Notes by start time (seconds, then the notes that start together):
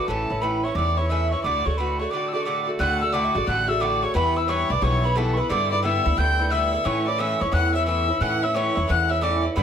0.08 A1 A2 E3 C#4 E4 A4 A5
0.30 A1 E3 C#4 E4
0.41 A2 E3 C#4 E4 B4 B5
0.64 C#4 E4 C#5 C#6
0.68 E3
0.75 E2 A2 E3 C#4 E4 D5 D6
0.97 E3 C#4 E4 C#5 C#6
1.09 A2 E3 C#4 E4 E5 E6
1.31 C#4 E4 C#5 C#6
1.35 E3
1.43 D2 A2 D3 A3 F#4 D5 D6
1.65 D2 D3 A3 F#4 C#5 C#6
1.77 A2 D3 A3 F#4 B4 B5
1.99 D3 A3 F#4 C#5 C#6
2.11 A2 D3 A3 F#4 D5 D6
2.28 E6
2.33 D3 A3 F#4 D5 D6
2.42 A2 D5 C#6 D6
2.46 D3 A3 F#4
2.67 D3 A3 F#4
2.79 D2 A2 D3 A3 F#4 F#5 F#6
3.01 D3 A3 F#4 E6
3.12 A2 D3 A3 F#4 D5 D6
3.24 E5
3.34 A1 D3 A3 F#4 D5
3.47 A1 A2 D3 A3 F#4 F#5 F#6
3.68 D3 A3 F#4 E5 E6
3.80 A2 D3 A3 F#4 D5 D6
4.02 D3 A3 F#4 C#5 C#6
4.14 E2 G2 E3 B3 E4 B4 B5
4.36 E3 B3 E4 E6
4.48 G2 E3 B3 E4 C#5 C#6
4.70 B1 E3 B3 E4 D5 D6
4.82 B1 G2 E3 B3 E4 C#5 C#6
5.03 E3 B3 E4 B5
5.16 G2 E3 B3 E4 A4 A5
5.34 B4 C#6
5.38 E3 B3 E4 B5
5.49 G2 D3 B3 E4 D5 D6
5.71 D3 B3 E4 D5 D6
5.83 G2 D3 B3 E4 E5 E6
6.04 D2 D3 B3 E4
6.17 D2 G2 D3 B3 E4 G5 G6
6.39 D3 B3 E4
6.50 G2 D3 B3 E4 E5 E6
6.72 D3 B3 E4
6.84 A2 E3 C#4 E4 C#5 C#6
7.06 E3 C#4 E4 D5 D6
7.18 A2 E3 C#4 E4 E5 E6
7.40 E2 E3 C#4 E4 C#5 C#6
7.52 E2 A2 E3 C#4 E4 F#5 F#6
7.73 E3 C#4 E4 E5 E6
7.86 A2 E3 C#4 E4 E5 E6
8.08 E3 C#4 E4
8.20 A2 E3 C#4 E4 F#5 F#6
8.43 E3 C#4 E4 E5 E6
8.55 A2 E3 C#4 E4 C#5 C#6
8.75 E2 E3 C#4 E4
8.88 E2 A2 E3 C#4 E4 F#5 F#6
9.09 E3 C#4 E4 E5 E6
9.21 A2 E3 C#4 E4 D5 D6
9.43 E3 C#4 E4
9.56 G2 D3 B3 D4 B4 B5